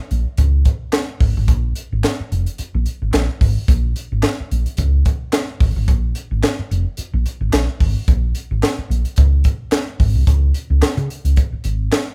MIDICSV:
0, 0, Header, 1, 4, 480
1, 0, Start_track
1, 0, Key_signature, -5, "minor"
1, 0, Tempo, 549451
1, 1296, Time_signature, 4, 2, 24, 8
1, 10611, End_track
2, 0, Start_track
2, 0, Title_t, "Fingered electric bass"
2, 0, Program_c, 0, 33
2, 96, Note_on_c, 0, 34, 80
2, 208, Note_off_c, 0, 34, 0
2, 336, Note_on_c, 0, 37, 93
2, 537, Note_off_c, 0, 37, 0
2, 1052, Note_on_c, 0, 32, 81
2, 1167, Note_off_c, 0, 32, 0
2, 1197, Note_on_c, 0, 32, 92
2, 1294, Note_off_c, 0, 32, 0
2, 1294, Note_on_c, 0, 34, 104
2, 1498, Note_off_c, 0, 34, 0
2, 1681, Note_on_c, 0, 32, 81
2, 1766, Note_off_c, 0, 32, 0
2, 2024, Note_on_c, 0, 29, 81
2, 2135, Note_off_c, 0, 29, 0
2, 2398, Note_on_c, 0, 34, 91
2, 2485, Note_off_c, 0, 34, 0
2, 2637, Note_on_c, 0, 32, 75
2, 2724, Note_off_c, 0, 32, 0
2, 2747, Note_on_c, 0, 34, 91
2, 2857, Note_off_c, 0, 34, 0
2, 2980, Note_on_c, 0, 32, 101
2, 3093, Note_off_c, 0, 32, 0
2, 3218, Note_on_c, 0, 34, 114
2, 3421, Note_off_c, 0, 34, 0
2, 3598, Note_on_c, 0, 32, 78
2, 3686, Note_off_c, 0, 32, 0
2, 3944, Note_on_c, 0, 34, 82
2, 4056, Note_off_c, 0, 34, 0
2, 4177, Note_on_c, 0, 37, 101
2, 4381, Note_off_c, 0, 37, 0
2, 4896, Note_on_c, 0, 32, 97
2, 5011, Note_off_c, 0, 32, 0
2, 5033, Note_on_c, 0, 32, 91
2, 5140, Note_off_c, 0, 32, 0
2, 5140, Note_on_c, 0, 34, 103
2, 5343, Note_off_c, 0, 34, 0
2, 5513, Note_on_c, 0, 32, 90
2, 5603, Note_off_c, 0, 32, 0
2, 5861, Note_on_c, 0, 29, 87
2, 5974, Note_off_c, 0, 29, 0
2, 6233, Note_on_c, 0, 34, 104
2, 6322, Note_off_c, 0, 34, 0
2, 6470, Note_on_c, 0, 32, 88
2, 6560, Note_off_c, 0, 32, 0
2, 6580, Note_on_c, 0, 34, 92
2, 6693, Note_off_c, 0, 34, 0
2, 6821, Note_on_c, 0, 32, 100
2, 6933, Note_off_c, 0, 32, 0
2, 7061, Note_on_c, 0, 34, 104
2, 7262, Note_off_c, 0, 34, 0
2, 7434, Note_on_c, 0, 32, 84
2, 7522, Note_off_c, 0, 32, 0
2, 7774, Note_on_c, 0, 34, 80
2, 7888, Note_off_c, 0, 34, 0
2, 8020, Note_on_c, 0, 37, 81
2, 8221, Note_off_c, 0, 37, 0
2, 8737, Note_on_c, 0, 32, 108
2, 8849, Note_off_c, 0, 32, 0
2, 8870, Note_on_c, 0, 36, 86
2, 8958, Note_off_c, 0, 36, 0
2, 8974, Note_on_c, 0, 37, 104
2, 9176, Note_off_c, 0, 37, 0
2, 9348, Note_on_c, 0, 37, 85
2, 9437, Note_off_c, 0, 37, 0
2, 9586, Note_on_c, 0, 49, 98
2, 9675, Note_off_c, 0, 49, 0
2, 9824, Note_on_c, 0, 37, 73
2, 9914, Note_off_c, 0, 37, 0
2, 10174, Note_on_c, 0, 32, 92
2, 10375, Note_off_c, 0, 32, 0
2, 10611, End_track
3, 0, Start_track
3, 0, Title_t, "Muted fingered electric bass strokes"
3, 1923, Note_on_c, 9, 29, 45
3, 2010, Note_off_c, 9, 29, 0
3, 2263, Note_on_c, 9, 29, 47
3, 2351, Note_off_c, 9, 29, 0
3, 3845, Note_on_c, 9, 29, 47
3, 3932, Note_off_c, 9, 29, 0
3, 5757, Note_on_c, 9, 29, 50
3, 5845, Note_off_c, 9, 29, 0
3, 6100, Note_on_c, 9, 29, 46
3, 6188, Note_off_c, 9, 29, 0
3, 7673, Note_on_c, 9, 29, 53
3, 7760, Note_off_c, 9, 29, 0
3, 9460, Note_on_c, 9, 29, 46
3, 9547, Note_off_c, 9, 29, 0
3, 10069, Note_on_c, 9, 29, 48
3, 10157, Note_off_c, 9, 29, 0
3, 10611, End_track
4, 0, Start_track
4, 0, Title_t, "Drums"
4, 94, Note_on_c, 9, 42, 65
4, 181, Note_off_c, 9, 42, 0
4, 327, Note_on_c, 9, 42, 89
4, 335, Note_on_c, 9, 36, 87
4, 414, Note_off_c, 9, 42, 0
4, 422, Note_off_c, 9, 36, 0
4, 568, Note_on_c, 9, 42, 72
4, 573, Note_on_c, 9, 36, 91
4, 655, Note_off_c, 9, 42, 0
4, 660, Note_off_c, 9, 36, 0
4, 804, Note_on_c, 9, 42, 93
4, 812, Note_on_c, 9, 38, 118
4, 812, Note_on_c, 9, 39, 96
4, 892, Note_off_c, 9, 42, 0
4, 900, Note_off_c, 9, 38, 0
4, 900, Note_off_c, 9, 39, 0
4, 1053, Note_on_c, 9, 36, 99
4, 1054, Note_on_c, 9, 46, 70
4, 1140, Note_off_c, 9, 36, 0
4, 1141, Note_off_c, 9, 46, 0
4, 1294, Note_on_c, 9, 36, 92
4, 1295, Note_on_c, 9, 42, 93
4, 1381, Note_off_c, 9, 36, 0
4, 1382, Note_off_c, 9, 42, 0
4, 1533, Note_on_c, 9, 42, 84
4, 1621, Note_off_c, 9, 42, 0
4, 1779, Note_on_c, 9, 42, 89
4, 1784, Note_on_c, 9, 38, 95
4, 1784, Note_on_c, 9, 39, 84
4, 1866, Note_off_c, 9, 42, 0
4, 1871, Note_off_c, 9, 38, 0
4, 1871, Note_off_c, 9, 39, 0
4, 2026, Note_on_c, 9, 42, 61
4, 2113, Note_off_c, 9, 42, 0
4, 2153, Note_on_c, 9, 42, 56
4, 2241, Note_off_c, 9, 42, 0
4, 2257, Note_on_c, 9, 42, 81
4, 2344, Note_off_c, 9, 42, 0
4, 2496, Note_on_c, 9, 42, 65
4, 2583, Note_off_c, 9, 42, 0
4, 2734, Note_on_c, 9, 42, 97
4, 2742, Note_on_c, 9, 38, 119
4, 2742, Note_on_c, 9, 39, 94
4, 2821, Note_off_c, 9, 42, 0
4, 2829, Note_off_c, 9, 38, 0
4, 2829, Note_off_c, 9, 39, 0
4, 2979, Note_on_c, 9, 36, 95
4, 2985, Note_on_c, 9, 46, 66
4, 3067, Note_off_c, 9, 36, 0
4, 3073, Note_off_c, 9, 46, 0
4, 3217, Note_on_c, 9, 36, 105
4, 3220, Note_on_c, 9, 42, 85
4, 3305, Note_off_c, 9, 36, 0
4, 3307, Note_off_c, 9, 42, 0
4, 3458, Note_on_c, 9, 42, 82
4, 3545, Note_off_c, 9, 42, 0
4, 3691, Note_on_c, 9, 42, 88
4, 3696, Note_on_c, 9, 38, 100
4, 3696, Note_on_c, 9, 39, 93
4, 3778, Note_off_c, 9, 42, 0
4, 3783, Note_off_c, 9, 38, 0
4, 3783, Note_off_c, 9, 39, 0
4, 3944, Note_on_c, 9, 42, 64
4, 4031, Note_off_c, 9, 42, 0
4, 4070, Note_on_c, 9, 42, 59
4, 4158, Note_off_c, 9, 42, 0
4, 4167, Note_on_c, 9, 42, 87
4, 4179, Note_on_c, 9, 36, 86
4, 4255, Note_off_c, 9, 42, 0
4, 4266, Note_off_c, 9, 36, 0
4, 4414, Note_on_c, 9, 42, 73
4, 4419, Note_on_c, 9, 36, 100
4, 4502, Note_off_c, 9, 42, 0
4, 4506, Note_off_c, 9, 36, 0
4, 4648, Note_on_c, 9, 42, 96
4, 4657, Note_on_c, 9, 38, 113
4, 4657, Note_on_c, 9, 39, 104
4, 4736, Note_off_c, 9, 42, 0
4, 4744, Note_off_c, 9, 38, 0
4, 4744, Note_off_c, 9, 39, 0
4, 4896, Note_on_c, 9, 36, 95
4, 4898, Note_on_c, 9, 46, 74
4, 4983, Note_off_c, 9, 36, 0
4, 4985, Note_off_c, 9, 46, 0
4, 5137, Note_on_c, 9, 36, 104
4, 5137, Note_on_c, 9, 42, 87
4, 5224, Note_off_c, 9, 36, 0
4, 5224, Note_off_c, 9, 42, 0
4, 5373, Note_on_c, 9, 42, 87
4, 5460, Note_off_c, 9, 42, 0
4, 5617, Note_on_c, 9, 42, 85
4, 5622, Note_on_c, 9, 38, 103
4, 5622, Note_on_c, 9, 39, 89
4, 5704, Note_off_c, 9, 42, 0
4, 5709, Note_off_c, 9, 38, 0
4, 5709, Note_off_c, 9, 39, 0
4, 5866, Note_on_c, 9, 42, 72
4, 5953, Note_off_c, 9, 42, 0
4, 6090, Note_on_c, 9, 42, 83
4, 6178, Note_off_c, 9, 42, 0
4, 6340, Note_on_c, 9, 42, 74
4, 6427, Note_off_c, 9, 42, 0
4, 6573, Note_on_c, 9, 42, 105
4, 6581, Note_on_c, 9, 38, 112
4, 6581, Note_on_c, 9, 39, 102
4, 6660, Note_off_c, 9, 42, 0
4, 6668, Note_off_c, 9, 38, 0
4, 6668, Note_off_c, 9, 39, 0
4, 6818, Note_on_c, 9, 36, 94
4, 6820, Note_on_c, 9, 46, 75
4, 6905, Note_off_c, 9, 36, 0
4, 6907, Note_off_c, 9, 46, 0
4, 7057, Note_on_c, 9, 42, 91
4, 7058, Note_on_c, 9, 36, 97
4, 7145, Note_off_c, 9, 36, 0
4, 7145, Note_off_c, 9, 42, 0
4, 7292, Note_on_c, 9, 42, 86
4, 7380, Note_off_c, 9, 42, 0
4, 7537, Note_on_c, 9, 42, 91
4, 7541, Note_on_c, 9, 38, 104
4, 7541, Note_on_c, 9, 39, 99
4, 7624, Note_off_c, 9, 42, 0
4, 7629, Note_off_c, 9, 38, 0
4, 7629, Note_off_c, 9, 39, 0
4, 7787, Note_on_c, 9, 42, 67
4, 7874, Note_off_c, 9, 42, 0
4, 7906, Note_on_c, 9, 42, 54
4, 7993, Note_off_c, 9, 42, 0
4, 8004, Note_on_c, 9, 42, 86
4, 8018, Note_on_c, 9, 36, 101
4, 8092, Note_off_c, 9, 42, 0
4, 8105, Note_off_c, 9, 36, 0
4, 8247, Note_on_c, 9, 42, 75
4, 8255, Note_on_c, 9, 36, 83
4, 8334, Note_off_c, 9, 42, 0
4, 8343, Note_off_c, 9, 36, 0
4, 8484, Note_on_c, 9, 42, 88
4, 8492, Note_on_c, 9, 38, 126
4, 8492, Note_on_c, 9, 39, 101
4, 8571, Note_off_c, 9, 42, 0
4, 8579, Note_off_c, 9, 38, 0
4, 8579, Note_off_c, 9, 39, 0
4, 8735, Note_on_c, 9, 36, 92
4, 8737, Note_on_c, 9, 46, 71
4, 8822, Note_off_c, 9, 36, 0
4, 8824, Note_off_c, 9, 46, 0
4, 8973, Note_on_c, 9, 36, 100
4, 8975, Note_on_c, 9, 42, 89
4, 9061, Note_off_c, 9, 36, 0
4, 9063, Note_off_c, 9, 42, 0
4, 9211, Note_on_c, 9, 42, 75
4, 9299, Note_off_c, 9, 42, 0
4, 9452, Note_on_c, 9, 42, 88
4, 9456, Note_on_c, 9, 38, 106
4, 9456, Note_on_c, 9, 39, 90
4, 9539, Note_off_c, 9, 42, 0
4, 9544, Note_off_c, 9, 38, 0
4, 9544, Note_off_c, 9, 39, 0
4, 9585, Note_on_c, 9, 42, 37
4, 9673, Note_off_c, 9, 42, 0
4, 9700, Note_on_c, 9, 42, 60
4, 9787, Note_off_c, 9, 42, 0
4, 9828, Note_on_c, 9, 42, 61
4, 9916, Note_off_c, 9, 42, 0
4, 9928, Note_on_c, 9, 42, 81
4, 9936, Note_on_c, 9, 36, 88
4, 10015, Note_off_c, 9, 42, 0
4, 10023, Note_off_c, 9, 36, 0
4, 10168, Note_on_c, 9, 42, 75
4, 10255, Note_off_c, 9, 42, 0
4, 10410, Note_on_c, 9, 42, 91
4, 10418, Note_on_c, 9, 38, 117
4, 10418, Note_on_c, 9, 39, 100
4, 10497, Note_off_c, 9, 42, 0
4, 10505, Note_off_c, 9, 38, 0
4, 10505, Note_off_c, 9, 39, 0
4, 10611, End_track
0, 0, End_of_file